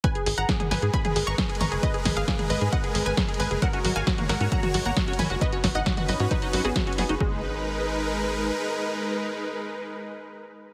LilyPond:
<<
  \new Staff \with { instrumentName = "Supersaw synth" } { \time 4/4 \key gis \minor \tempo 4 = 134 << { <gis' b'>1~ | <gis' b'>1 | <fis' cis''>1 | <cis' b'>1 |
<gis dis' ais' b'>1~ | <gis dis' ais' b'>1 | } \\ { <gis ais'>1~ | <gis ais'>1~ | <gis ais'>1 | dis'1 |
r1 | r1 | } >> }
  \new Staff \with { instrumentName = "Synth pluck" } { \time 4/4 \key gis \minor <b' gis''>16 gis'16 gis'16 <fis'' ais''>16 gis'16 gis'16 <b' gis''>16 gis'16 <gis'' b''>16 gis'16 gis'16 <ais'' cis'''>16 gis'16 gis'16 <ais'' cis'''>16 gis'16 | <b' dis''>16 gis'16 gis'16 <gis' eis''>16 gis'16 gis'16 <b' dis''>16 gis'16 <dis'' fis''>16 gis'16 gis'16 <b' gis''>16 gis'16 gis'16 <b' gis''>16 gis'16 | <ais' fis''>16 fis'16 fis'16 <eis'' gis''>16 fis'16 fis'16 <ais' fis''>16 fis'16 <fis'' ais''>16 fis'16 fis'16 <fis'' ais''>16 fis'16 fis'16 <gis'' b''>16 fis'16 | <b' dis''>16 fis'16 fis'16 <dis'' fis''>16 fis'16 fis'16 <b' dis''>16 fis'16 <dis' b'>16 fis'16 fis'16 <b gis'>16 fis'16 fis'16 <b gis'>16 fis'16 |
gis'1~ | gis'1 | }
  \new Staff \with { instrumentName = "Acid bass" } { \clef bass \time 4/4 \key gis \minor r1 | r1 | fis16 cis'16 fis16 fis'16 fis16 ais16 fis16 cis'16 fis16 fis'16 fis16 ais16 fis16 cis'16 fis16 fis'16 | fis16 cis'16 fis16 dis'16 fis16 fis'16 fis16 cis'16 fis16 dis'16 fis16 fis'16 fis16 cis'16 fis16 dis'16 |
gis8 r2. r8 | r1 | }
  \new Staff \with { instrumentName = "Analog synth bass" } { \clef bass \time 4/4 \key gis \minor r8 gis,,16 gis,,16 r8 gis,,16 gis,16 r8 gis,,16 gis,,16 r8 gis,,16 fis,,16 | r8 gis,,16 gis,,16 r8 gis,,16 gis,16 r8 gis,,16 gis,,16 r8 gis,,16 fis,,16 | r8 gis,,16 gis,,16 r8 gis,,16 gis,16 r8 gis,,16 gis,,16 r8 gis,,16 fis,,16 | r8 gis,,16 gis,,16 r8 gis,,16 gis,16 r8 gis,,16 gis,,16 r8 fis,,16 fis,,16 |
gis,,2. r4 | r1 | }
  \new DrumStaff \with { instrumentName = "Drums" } \drummode { \time 4/4 <hh bd>16 hh16 hho16 hh16 <hh bd sn>16 <hh toml>16 <hho sn>16 hh16 <hh bd>16 <hh toml>16 hho16 hh16 <hh bd sn>16 hh32 hh32 <hho toml>16 hh16 | <hh bd>16 hh16 <hho bd sn toml>16 hh16 <hh bd sn>16 <hh toml>16 hho16 hh16 <hh bd>16 hh16 hho16 hh16 <hh bd sn>16 hh32 hh32 hho16 hh16 | <hh bd>16 hh16 hho16 hh16 <hh bd sn>16 <hh toml>16 <hho sn>16 hh16 <hh bd>16 <hh toml>16 hho16 hh16 <hh bd sn>16 hh32 hh32 <hho toml>16 hh16 | <hh bd>16 hh16 <hho bd sn toml>16 hh16 <hh bd sn>16 <hh toml>16 hho16 hh16 <hh bd>16 hh16 hho8 <hh bd sn>16 hh32 hh32 hho16 hh16 |
bd4 r4 r4 r4 | r4 r4 r4 r4 | }
>>